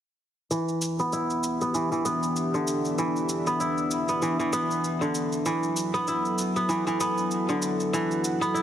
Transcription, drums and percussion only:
0.51 cabasa
0.68 cabasa
0.82 cabasa
0.99 cabasa
1.13 cabasa
1.30 cabasa
1.43 cabasa
1.61 cabasa
1.74 cabasa
1.92 cabasa
2.05 cabasa
2.23 cabasa
2.36 cabasa
2.54 cabasa
2.67 cabasa
2.85 cabasa
2.98 cabasa
3.16 cabasa
3.29 cabasa
3.47 cabasa
3.60 cabasa
3.78 cabasa
3.91 cabasa
4.08 cabasa
4.22 cabasa
4.40 cabasa
4.53 cabasa
4.71 cabasa
4.84 cabasa
5.02 cabasa
5.15 cabasa
5.32 cabasa
5.46 cabasa
5.63 cabasa
5.77 cabasa
5.94 cabasa
6.08 cabasa
6.25 cabasa
6.38 cabasa
6.56 cabasa
6.69 cabasa
6.87 cabasa
7.00 cabasa
7.18 cabasa
7.31 cabasa
7.49 cabasa
7.62 cabasa
7.80 cabasa
7.94 cabasa
8.11 cabasa
8.24 cabasa
8.42 cabasa
8.56 cabasa

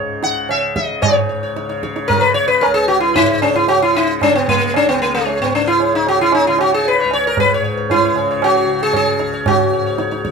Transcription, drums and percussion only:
0.23 tabla te
0.49 tabla na
0.76 tabla ke
1.03 tabla na, tabla ge
1.56 tabla te
1.70 tabla te
1.83 tabla ke
1.96 tabla te
2.10 tabla tin, tabla ge
2.63 tabla na
3.15 tabla tin, tabla ge
3.42 tabla na
3.68 tabla na
4.21 tabla na, tabla ge
4.48 tabla ge
4.74 tabla na
5.27 tabla tin
5.80 tabla tin
6.07 tabla na
6.32 tabla na
6.59 tabla na
6.85 tabla tin
7.11 tabla na
7.37 tabla tin, tabla ge
7.90 tabla tin, tabla ge
8.16 tabla na
8.42 tabla na
8.93 tabla na, tabla ge
9.19 tabla te
9.46 tabla na, tabla ge
9.98 tabla te
10.12 tabla te
10.25 tabla ke

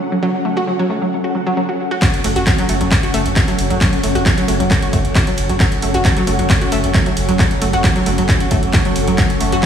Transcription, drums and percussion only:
2.02 kick, clap, closed hi-hat, ride
2.14 closed hi-hat
2.24 open hi-hat, ride
2.36 closed hi-hat
2.47 kick, clap, closed hi-hat, ride
2.58 closed hi-hat
2.69 open hi-hat, ride
2.81 closed hi-hat
2.91 kick, clap, closed hi-hat, ride
3.03 closed hi-hat
3.14 open hi-hat, ride
3.26 closed hi-hat
3.36 kick, clap, closed hi-hat, ride
3.48 closed hi-hat
3.59 open hi-hat, ride
3.70 closed hi-hat
3.81 kick, clap, closed hi-hat, ride
3.93 closed hi-hat
4.03 open hi-hat, ride
4.15 closed hi-hat
4.26 kick, clap, closed hi-hat, ride
4.38 closed hi-hat
4.48 open hi-hat, ride
4.60 closed hi-hat
4.71 kick, clap, closed hi-hat, ride
4.82 closed hi-hat
4.93 kick, open hi-hat, ride
5.05 closed hi-hat
5.15 kick, clap, closed hi-hat, ride
5.27 closed hi-hat
5.38 open hi-hat, ride
5.49 closed hi-hat
5.60 kick, clap, closed hi-hat, ride
5.72 closed hi-hat
5.82 open hi-hat, ride
5.94 closed hi-hat
6.05 kick, clap, closed hi-hat, ride
6.17 closed hi-hat
6.27 open hi-hat, ride
6.39 closed hi-hat
6.50 kick, clap, closed hi-hat, ride
6.61 closed hi-hat
6.72 open hi-hat, ride
6.84 closed hi-hat
6.94 kick, clap, closed hi-hat, ride
7.06 closed hi-hat
7.17 open hi-hat, ride
7.29 closed hi-hat
7.39 kick, clap, closed hi-hat, ride
7.51 closed hi-hat
7.62 open hi-hat, ride
7.73 closed hi-hat
7.84 kick, clap, closed hi-hat, ride
7.96 closed hi-hat
8.06 open hi-hat, ride
8.18 closed hi-hat
8.29 kick, clap, closed hi-hat, ride
8.40 closed hi-hat
8.51 kick, open hi-hat, ride
8.63 closed hi-hat
8.73 kick, clap, closed hi-hat, ride
8.85 closed hi-hat
8.96 open hi-hat, ride
9.08 closed hi-hat
9.18 kick, clap, closed hi-hat, ride
9.30 closed hi-hat
9.41 open hi-hat, ride
9.52 closed hi-hat

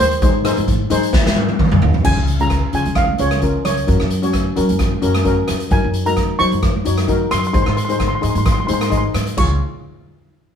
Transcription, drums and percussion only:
0.00 low conga
0.11 closed hi-hat
0.22 kick, closed hi-hat
0.45 cross-stick, closed hi-hat, low conga
0.57 closed hi-hat, high conga
0.68 kick, closed hi-hat
0.90 closed hi-hat, low conga
1.03 closed hi-hat
1.13 kick, snare, high conga
1.26 snare
1.36 high tom, high conga
1.49 high tom, high conga
1.59 kick, mid tom, low conga
1.71 mid tom, high conga
1.81 floor tom, low conga
1.94 floor tom, low conga
2.05 kick, crash
2.27 closed hi-hat
2.39 closed hi-hat, high conga
2.50 kick, cross-stick, closed hi-hat
2.73 closed hi-hat, low conga
2.85 closed hi-hat, high conga
2.95 kick, cross-stick, closed hi-hat, high conga, low conga
3.08 high conga
3.18 closed hi-hat
3.31 cross-stick, closed hi-hat, high conga
3.42 kick, closed hi-hat
3.65 cross-stick, closed hi-hat, low conga
3.77 closed hi-hat
3.88 kick, closed hi-hat
4.00 cross-stick
4.10 closed hi-hat
4.23 closed hi-hat, high conga
4.33 kick, cross-stick, closed hi-hat
4.56 closed hi-hat, low conga
4.69 closed hi-hat, high conga
4.79 kick, cross-stick, closed hi-hat, high conga, low conga
4.92 high conga
5.02 closed hi-hat
5.15 cross-stick, closed hi-hat, high conga
5.25 kick, closed hi-hat
5.48 cross-stick, closed hi-hat, low conga
5.60 closed hi-hat
5.71 kick, closed hi-hat
5.94 closed hi-hat
6.06 closed hi-hat, high conga
6.17 kick, cross-stick, closed hi-hat
6.39 closed hi-hat, low conga
6.51 closed hi-hat, high conga
6.62 kick, cross-stick, closed hi-hat, high conga, low conga
6.74 high conga
6.85 closed hi-hat
6.98 cross-stick, closed hi-hat, high conga
7.08 kick, closed hi-hat
7.31 cross-stick, closed hi-hat, low conga
7.44 closed hi-hat
7.54 kick, closed hi-hat
7.66 cross-stick
7.77 closed hi-hat
7.89 closed hi-hat, high conga
8.00 kick, cross-stick, closed hi-hat
8.23 closed hi-hat, low conga
8.35 closed hi-hat, high conga
8.45 kick, cross-stick, closed hi-hat, high conga, low conga
8.58 high conga
8.68 closed hi-hat, low conga
8.81 cross-stick, closed hi-hat, high conga
8.92 kick, closed hi-hat
9.14 cross-stick, closed hi-hat, low conga
9.27 closed hi-hat
9.37 kick, crash, high conga

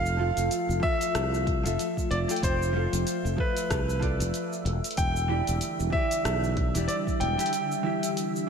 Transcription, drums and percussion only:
0.06 cabasa
0.37 closed hi-hat, cabasa
0.51 closed hi-hat, cabasa
0.70 cabasa
0.83 kick
1.01 closed hi-hat, cabasa
1.15 cross-stick, closed hi-hat, cabasa
1.34 cabasa
1.47 kick, closed hi-hat
1.66 closed hi-hat, cabasa
1.79 closed hi-hat, cabasa
1.97 kick, cabasa
2.11 closed hi-hat
2.29 closed hi-hat, cabasa
2.36 closed hi-hat
2.43 kick, closed hi-hat, cabasa
2.63 cabasa
2.93 closed hi-hat, cabasa
3.07 closed hi-hat, cabasa
3.26 cabasa
3.38 kick
3.57 closed hi-hat, cabasa
3.70 kick, cross-stick, closed hi-hat, cabasa
3.90 cabasa
4.02 kick, closed hi-hat
4.20 closed hi-hat, cabasa
4.34 closed hi-hat, cabasa
4.53 cabasa
4.66 closed hi-hat
4.84 closed hi-hat, cabasa
4.91 closed hi-hat
4.97 kick, closed hi-hat, cabasa
5.16 cabasa
5.47 closed hi-hat, cabasa
5.61 closed hi-hat, cabasa
5.80 cabasa
5.93 kick
6.11 closed hi-hat, cabasa
6.25 cross-stick, closed hi-hat, cabasa
6.44 cabasa
6.57 kick, closed hi-hat
6.75 closed hi-hat, cabasa
6.89 closed hi-hat, cabasa
7.07 kick, cabasa
7.21 closed hi-hat
7.39 closed hi-hat, cabasa
7.46 closed hi-hat
7.53 closed hi-hat, cabasa
7.72 cabasa
8.03 closed hi-hat, cabasa
8.17 closed hi-hat, cabasa
8.36 cabasa

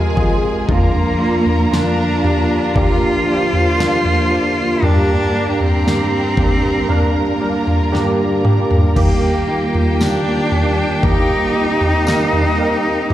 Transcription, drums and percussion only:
0.17 kick
0.69 kick, floor tom
1.46 floor tom
1.74 snare
2.24 floor tom
2.75 kick, floor tom
3.53 floor tom
3.80 snare
4.05 floor tom
4.82 floor tom
5.60 floor tom
5.88 snare
6.37 kick, floor tom
6.89 floor tom
7.67 floor tom
7.95 snare
8.45 mid tom
8.71 floor tom
8.96 kick, floor tom, crash
9.74 floor tom
10.01 snare, tambourine
10.51 floor tom
11.03 kick, floor tom
11.81 floor tom
12.07 snare, tambourine
12.33 floor tom
13.10 floor tom

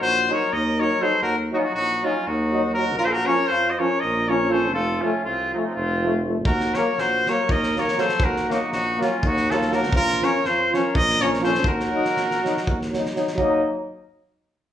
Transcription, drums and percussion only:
6.45 kick
6.60 snare
6.74 snare
6.98 snare
7.26 snare
7.49 kick
7.63 snare
7.76 snare
7.88 snare
7.98 snare
8.09 snare
8.20 kick
8.36 snare
8.51 snare
8.72 snare
9.01 snare
9.23 kick
9.37 snare
9.51 snare
9.62 snare
9.72 snare
9.83 snare
9.92 kick
10.08 snare
10.22 snare
10.45 snare
10.74 snare
10.95 kick
11.10 snare
11.22 snare
11.34 snare
11.44 snare
11.54 snare
11.64 kick
11.80 snare
12.05 snare
12.17 snare
12.31 snare
12.45 snare
12.57 snare
12.67 kick
12.82 snare
12.94 snare
13.05 snare
13.16 snare
13.27 snare
13.38 kick

